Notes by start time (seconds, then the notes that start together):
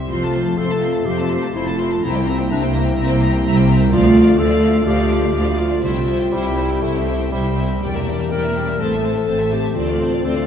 Already playing: C3 C4 E4 G4
0.08 F1 F2 F3 A3 C4 F4 C5 C6
0.21 A3 A4 A5
0.33 C4 C5 C6
0.45 A3 A4 A5
0.57 F1 F2 C4 A4 C5 C6
0.70 A3 A4 A5
0.82 C4 F4 C5 C6
0.93 A3 A4 A5
1.06 F1 F2 F3 C4 G4 C5 C6
1.18 A3 A4 A5
1.30 C4 C5 C6
1.42 A3 A4 A5
1.54 F1 F2 C4 E4 A4 C5 C6
1.67 A3 A4 A5
1.78 C4 F4 C5 C6
1.91 A3 A4 A5
2.02 C2 C3 A#3 C4 E4 E5 A#5
2.14 A#3 C5 G5
2.26 G3 C4 E5 A#5
2.38 A#3 C5 G5
2.50 C2 C4 D4 E4 E5 A#5
2.61 A#3 C5 G5
2.73 A#3 C4 E5 A#5
2.85 A#3 C5 G5
2.96 C2 C3 C4 E5 A#5
3.08 A#3 C5 G5
3.21 G3 C4 E5 A#5
3.33 A#3 C5 G5
3.44 C2 C4 E4 E5 A#5
3.56 A#3 C5 G5
3.69 A#3 C4 E5 A#5
3.80 A#3 C5 G5
3.91 D2 D3 F3 A3 F4 D5 F5
4.03 A3 D5 F5
4.15 F3 A3 D5 F5
4.27 A3 D5 F5
4.38 D2 F3 F4 A4 D5 F5
4.51 A3 D5 F5
4.62 F3 D4 D5 F5
4.72 A3 D5 F5
4.85 D2 D3 F3 G4 D5 F5
4.96 A3 D5 F5
5.09 F3 A3 D5 F5
5.20 A3 D5 F5
5.34 D2 F3 F4 D5 F5
5.45 A3 D5 F5
5.56 F3 D4 F4 D5 F5
5.70 A3 D5 F5
5.82 C2 C3 C4 E4 F4 G4 C5 E5
5.95 C4 E5 G5
6.07 G3 E4 C5 E5
6.19 C4 E5 G5
6.32 C2 G3 E4 G4 C5 E5
6.45 C4 E5 G5
6.57 C4 E4 C5 E5
6.69 C4 E5 G5
6.82 C2 C3 A3 E4 C5 E5
6.95 C4 E5 G5
7.08 G3 E4 C5 E5
7.19 C4 E5 G5
7.32 C2 G3 E4 G4 C5 E5
7.45 C4 E5 G5
7.57 C4 E4 C5 E5
7.70 C4 E5 G5
7.82 E1 E2 E3 G3 D4 G4 A#4 D5 G5
7.95 A#3 A#4 E5
8.07 G3 A#3 D5 G5
8.19 A#3 A#4 E5
8.30 E1 E2 G3 E4 A#4 D5 G5
8.42 A#3 A#4 E5
8.55 G3 D4 D5 G5
8.67 A#3 A#4 E5
8.79 A1 A2 C4 A4 C5 A5
8.91 A3 A4 E5
9.03 E3 C4 C5 A5
9.15 A3 A4 E5
9.26 A1 A2 C4 E4 C5 A5
9.38 A3 A4 E5
9.51 C4 G4 C5 A5
9.63 A3 A4 E5
9.75 D2 D3 C4 F4 C5 D5
9.87 A3 D5 F5
9.99 A3 C4 C5 D5
10.11 A3 D5 F5
10.23 D2 C4 F4 A4 C5 D5
10.35 A3 D5 F5